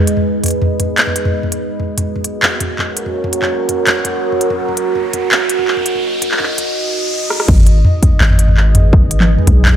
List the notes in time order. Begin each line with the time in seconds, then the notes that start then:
Already playing: G#3 G#4 B4 D#5
0.07 closed hi-hat
0.17 mid tom
0.44 closed hi-hat, mid tom
0.46 closed hi-hat
0.48 closed hi-hat
0.51 closed hi-hat
0.62 mid tom
0.80 closed hi-hat, mid tom
0.98 clap, closed hi-hat
1.07 mid tom
1.16 closed hi-hat
1.25 mid tom
1.43 mid tom
1.52 closed hi-hat
1.70 F#4, riser
1.80 mid tom
1.86 A#4
1.98 closed hi-hat, mid tom
2.16 mid tom
2.24 closed hi-hat
2.35 C#5
2.43 clap, mid tom
2.60 closed hi-hat, mid tom
2.79 clap, mid tom
2.97 closed hi-hat
3.06 mid tom
3.24 mid tom
3.33 closed hi-hat
3.42 clap, mid tom
3.69 closed hi-hat, mid tom
3.87 clap, closed hi-hat, mid tom
4.05 closed hi-hat, mid tom
4.32 mid tom
4.41 closed hi-hat
4.50 mid tom
4.68 mid tom
4.77 closed hi-hat
4.95 mid tom
5.00 D#5
5.13 closed hi-hat, mid tom
5.31 clap, mid tom
5.49 closed hi-hat
5.59 mid tom
5.68 clap
5.77 mid tom
5.86 closed hi-hat
5.95 mid tom
6.22 closed hi-hat, mid tom
6.31 clap
6.37 clap, mid tom
6.43 clap
6.58 closed hi-hat, mid tom
7.30 cross-stick
7.40 cross-stick
7.48 G#1 G#3, kick, crash
7.58 mid tom
7.62 G#4 B4
7.67 closed hi-hat
7.85 mid tom
8.03 kick, closed hi-hat, mid tom
8.21 G#1, clap
8.30 mid tom
8.39 closed hi-hat
8.48 mid tom
8.57 clap
8.75 closed hi-hat, mid tom
8.93 kick, mid tom
9.11 closed hi-hat
9.20 clap, mid tom
9.38 mid tom
9.47 B1, kick, closed hi-hat
9.65 clap, mid tom